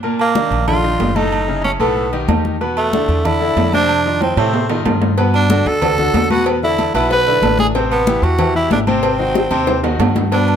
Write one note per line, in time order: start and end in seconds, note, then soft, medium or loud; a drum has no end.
0.03 0.30 A#2 medium
0.03 0.30 A#3 medium
0.03 0.30 A#4 medium
0.03 high conga soft
0.03 low agogo medium
0.19 0.65 A#3 loud
0.19 high conga soft
0.19 low agogo loud
0.35 0.62 D#3 medium
0.35 0.62 D4 medium
0.35 0.62 D#4 medium
0.35 high conga loud
0.35 low timbale medium
0.51 0.96 A#1 medium
0.51 high conga soft
0.51 low agogo medium
0.67 0.81 D3 medium
0.67 0.81 D4 medium
0.67 0.81 D#4 medium
0.67 1.17 F4 loud
0.67 high conga soft
0.67 low conga medium
0.67 low agogo loud
0.84 1.10 D#3 medium
0.84 1.10 D4 medium
0.84 1.10 D#4 medium
0.84 high conga soft
0.99 1.74 F#1 loud
0.99 high conga medium
0.99 low timbale medium
0.99 low agogo medium
1.16 1.42 A2 medium
1.16 1.42 A3 medium
1.16 1.64 D#4 loud
1.16 1.43 A4 loud
1.16 high conga medium
1.16 low agogo medium
1.32 high conga soft
1.32 low agogo loud
1.48 1.74 C#3 medium
1.48 1.74 C#4 medium
1.48 1.75 E4 medium
1.48 high conga soft
1.64 1.71 C#4 medium
1.64 high conga medium
1.64 low timbale medium
1.64 low agogo medium
1.79 2.25 B1 loud
1.79 2.06 A2 loud
1.79 2.07 A3 medium
1.79 2.25 B3 medium
1.79 2.07 A4 medium
1.79 high conga soft
1.79 low agogo loud
1.97 high conga soft
2.13 2.26 D#3 medium
2.13 2.26 D#4 medium
2.13 2.26 G4 medium
2.13 high conga soft
2.13 low agogo medium
2.28 3.03 E2 medium
2.28 2.55 D#3 medium
2.28 2.55 D#4 medium
2.28 2.55 G4 medium
2.28 high conga medium
2.28 low timbale medium
2.28 low agogo loud
2.45 high conga medium
2.61 2.87 B2 medium
2.61 2.87 B3 medium
2.61 2.87 B4 medium
2.61 high conga soft
2.61 low agogo medium
2.77 3.28 A3 loud
2.77 high conga soft
2.77 low agogo loud
2.93 3.19 D3 medium
2.93 3.19 D4 medium
2.93 3.20 E4 medium
2.93 high conga loud
2.93 low timbale medium
3.08 3.53 E2 loud
3.08 high conga soft
3.08 low agogo medium
3.25 3.38 D3 medium
3.25 3.38 D4 medium
3.25 3.38 E4 medium
3.25 3.74 E4 loud
3.25 high conga soft
3.25 low conga medium
3.25 low agogo loud
3.41 3.67 D3 medium
3.41 3.68 D4 medium
3.41 3.68 E4 medium
3.41 high conga soft
3.56 4.31 F2 medium
3.56 high conga medium
3.56 low timbale medium
3.56 low agogo medium
3.73 4.00 C3 loud
3.73 4.00 C4 medium
3.73 4.19 D4 loud
3.73 4.00 C5 medium
3.73 high conga medium
3.73 low agogo medium
3.89 high conga soft
3.89 low agogo loud
4.06 4.32 D#3 medium
4.06 4.32 D#4 medium
4.06 4.32 F4 medium
4.06 high conga soft
4.21 4.37 C4 medium
4.21 high conga medium
4.21 high timbale loud
4.21 low agogo medium
4.37 4.82 A2 loud
4.37 4.64 C3 loud
4.37 4.83 A3 medium
4.37 4.64 C4 medium
4.37 4.64 C5 medium
4.37 high conga soft
4.37 high timbale loud
4.37 low agogo loud
4.53 high conga soft
4.53 low timbale medium
4.69 4.83 D#3 medium
4.69 4.83 D#4 medium
4.69 4.83 F4 medium
4.69 high conga soft
4.69 low timbale medium
4.69 low agogo medium
4.85 5.60 G2 medium
4.85 5.12 D#3 medium
4.85 5.12 D#4 medium
4.85 5.12 F4 medium
4.85 high conga medium
4.85 low timbale loud
4.85 low agogo loud
5.02 high conga medium
5.02 low timbale medium
5.17 5.44 B2 medium
5.17 5.44 B3 medium
5.17 5.44 B4 medium
5.17 cowbell loud
5.17 low agogo medium
5.34 5.69 D4 loud
5.34 high conga soft
5.34 low agogo loud
5.50 5.76 D3 medium
5.50 5.76 D4 medium
5.50 5.77 F#4 medium
5.50 cowbell medium
5.50 high conga loud
5.50 low timbale medium
5.66 6.11 D2 loud
5.66 6.31 A4 loud
5.66 high conga soft
5.66 low agogo medium
5.82 5.95 D3 medium
5.82 5.95 D4 medium
5.82 5.96 F#4 medium
5.82 cowbell loud
5.82 high conga soft
5.82 low conga medium
5.82 low agogo loud
5.98 6.25 D3 medium
5.98 6.25 D4 medium
5.98 6.25 F#4 medium
5.98 high conga soft
5.98 low conga medium
6.14 6.89 E2 medium
6.14 cowbell medium
6.14 high conga medium
6.14 low timbale medium
6.14 low agogo medium
6.30 6.57 B2 medium
6.30 6.57 B3 medium
6.30 6.46 F#4 loud
6.30 6.57 B4 medium
6.30 high conga medium
6.30 low agogo medium
6.46 cowbell loud
6.46 high conga soft
6.46 low agogo loud
6.63 6.89 D3 medium
6.63 6.89 D4 medium
6.63 6.89 E4 medium
6.63 6.93 E4 loud
6.63 high conga soft
6.79 cowbell medium
6.79 high conga medium
6.79 low timbale medium
6.79 low agogo medium
6.94 7.39 B1 loud
6.94 7.21 B2 loud
6.94 7.21 B3 loud
6.94 7.10 E4 medium
6.94 7.21 B4 medium
6.94 cowbell medium
6.94 high conga soft
6.94 low agogo loud
7.11 7.56 B4 loud
7.11 cowbell loud
7.11 high conga soft
7.27 7.40 D3 medium
7.27 7.40 D4 medium
7.27 7.40 E4 medium
7.27 high conga soft
7.27 low agogo medium
7.42 8.17 A1 medium
7.42 7.69 D3 medium
7.42 7.69 D4 medium
7.42 7.70 E4 medium
7.42 cowbell medium
7.42 high conga medium
7.42 low timbale medium
7.42 low agogo loud
7.59 7.67 G#4 loud
7.59 cowbell medium
7.59 high conga medium
7.75 8.01 C3 medium
7.75 8.02 C4 medium
7.75 8.02 C5 medium
7.75 cowbell loud
7.75 high conga soft
7.75 low agogo medium
7.91 8.25 B3 medium
7.91 high conga soft
7.91 low agogo loud
8.07 8.33 E3 medium
8.07 8.33 E4 medium
8.07 8.34 G4 medium
8.07 cowbell medium
8.07 high conga loud
8.07 low timbale medium
8.22 8.67 E2 medium
8.22 8.56 F#4 loud
8.22 high conga soft
8.22 low agogo medium
8.39 8.52 E3 medium
8.39 8.53 E4 medium
8.39 8.53 G4 medium
8.39 cowbell loud
8.39 high conga soft
8.39 low conga medium
8.39 low agogo loud
8.55 8.81 E3 medium
8.55 8.82 E4 medium
8.55 8.71 E4 loud
8.55 8.82 G4 medium
8.55 high conga soft
8.70 9.45 G#1 medium
8.70 8.79 D4 medium
8.70 cowbell medium
8.70 high conga medium
8.70 low timbale medium
8.70 low agogo medium
8.87 9.14 C3 loud
8.87 9.14 C4 loud
8.87 9.96 C4 loud
8.87 9.14 C5 medium
8.87 high conga medium
8.87 low agogo medium
9.03 cowbell loud
9.03 high conga soft
9.03 low agogo loud
9.19 9.46 D#3 medium
9.19 9.46 D#4 medium
9.19 9.46 F#4 medium
9.19 high conga soft
9.35 cowbell medium
9.35 high bongo loud
9.35 high conga medium
9.35 low timbale medium
9.35 low agogo medium
9.51 9.96 D#2 loud
9.51 9.78 C3 loud
9.51 9.78 C4 loud
9.51 9.78 C5 loud
9.51 cowbell medium
9.51 high conga soft
9.51 low agogo loud
9.67 cowbell loud
9.67 low bongo medium
9.67 high conga soft
9.67 high timbale loud
9.83 9.97 D#3 medium
9.83 9.97 D#4 medium
9.83 9.97 F#4 medium
9.83 high conga soft
9.83 low timbale loud
9.83 low agogo medium
9.99 10.56 G2 loud
9.99 10.26 D#3 medium
9.99 10.26 D#4 medium
9.99 10.26 F#4 medium
9.99 cowbell medium
9.99 high conga medium
9.99 low timbale loud
9.99 low agogo loud
10.16 cowbell medium
10.16 low bongo medium
10.16 high conga medium
10.16 low timbale medium
10.32 10.56 B2 medium
10.32 10.56 B3 medium
10.32 10.56 D4 medium
10.32 10.56 B4 medium
10.32 cowbell loud
10.32 high conga soft
10.32 low agogo medium
10.48 high conga soft
10.48 low agogo loud